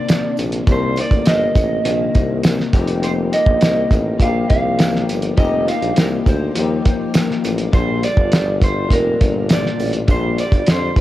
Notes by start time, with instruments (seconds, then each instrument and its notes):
Already playing: clean electric guitar C3 D#3 A#3 D4 D5, string machine C3 D#3 A#3 D4
0.09 snare, closed hi-hat, tambourine
0.37 tuba A#1, closed hi-hat, tambourine
0.52 closed hi-hat
0.67 tuba C2, clean electric guitar C3 D#3 A#3 D4, kick, closed hi-hat, tambourine
0.72 clean electric guitar C5
0.96 clean electric guitar D#3 A#3, closed hi-hat, tambourine
1.01 clean electric guitar D5
1.11 tuba A1, kick, closed hi-hat
1.26 tuba G1, clean electric guitar D#5, snare, closed hi-hat, tambourine
1.55 tuba A1, kick, closed hi-hat, tambourine
1.84 tuba A#1, clean electric guitar C3 D#3 A#3, closed hi-hat, tambourine
2.15 tuba C2, kick, closed hi-hat, tambourine
2.44 snare, closed hi-hat, tambourine
2.60 snare
2.73 tuba F1, clean electric guitar F3 A#3 D#4 G4, string machine G3 A#3 F4, kick, closed hi-hat, tambourine
2.88 closed hi-hat
3.03 clean electric guitar C5, closed hi-hat, tambourine
3.32 clean electric guitar A#3 D#4 G4 D#5, closed hi-hat, tambourine
3.46 tuba A#1, kick
3.61 tuba C2, snare, closed hi-hat, tambourine
3.91 tuba A1, kick, closed hi-hat, tambourine
4.19 tuba A#1, clean electric guitar F3 A#3 F5, kick, closed hi-hat, tambourine
4.23 clean electric guitar D#4 G4
4.49 tuba C2, clean electric guitar F5, kick, closed hi-hat
4.79 snare, closed hi-hat, tambourine
4.95 snare
5.09 tuba G1, closed hi-hat, tambourine
5.22 closed hi-hat
5.37 tuba F1, clean electric guitar F3 A#3 D#4 G4 D#5, kick, closed hi-hat, tambourine
5.67 clean electric guitar A#3 D#4 G4 F5, closed hi-hat, tambourine
5.82 tuba A#1, closed hi-hat
5.96 tuba C2, clean electric guitar A#4, snare, closed hi-hat, tambourine
6.26 tuba D2, clean electric guitar C5, kick, closed hi-hat, tambourine
6.55 tuba D#2, clean electric guitar F3 A#3 D#4, closed hi-hat
6.59 clean electric guitar G4
6.85 kick, closed hi-hat, tambourine
7.14 snare, closed hi-hat, tambourine
7.31 snare
7.44 tuba A1, closed hi-hat, tambourine
7.58 closed hi-hat
7.72 tuba A#1, clean electric guitar A#2 G3 D4 F4 C5, string machine D3, kick, closed hi-hat, tambourine
8.02 clean electric guitar G3 D4 F4 D5, closed hi-hat, tambourine
8.17 tuba G1, kick
8.32 snare, closed hi-hat, tambourine
8.62 clean electric guitar C5, kick, closed hi-hat, tambourine
8.89 tuba F1, clean electric guitar A#2 G3 D4 A#4, kick, closed hi-hat
8.94 clean electric guitar F4
9.21 tuba G1, kick, closed hi-hat, tambourine
9.49 clean electric guitar D5, snare, closed hi-hat, tambourine
9.66 snare
9.79 tuba A1, open hi-hat, tambourine
9.93 closed hi-hat
10.08 tuba A#1, clean electric guitar A#2 G3 D4 F4 C5, string machine G4, kick, closed hi-hat, tambourine
10.37 clean electric guitar G3 D4 F4 D5, closed hi-hat, tambourine
10.52 tuba G1, kick, closed hi-hat
10.67 tuba F2, snare, closed hi-hat, tambourine
10.72 clean electric guitar C5
10.96 tuba G2, kick, closed hi-hat